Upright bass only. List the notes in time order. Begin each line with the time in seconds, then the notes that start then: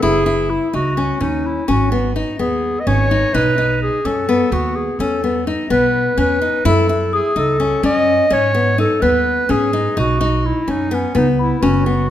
0.03 F#1
0.74 C#2
1.21 D#2
1.68 G#1
2.39 D#2
2.87 G#1
3.34 B1
4.05 F#2
4.52 D#2
4.99 E2
5.70 B1
6.18 E2
6.65 F#2
7.36 C#2
7.83 F#2
8.31 G#2
9.02 D#2
9.50 G#2
9.97 B1
10.68 F#2
11.15 C#2
11.63 F#1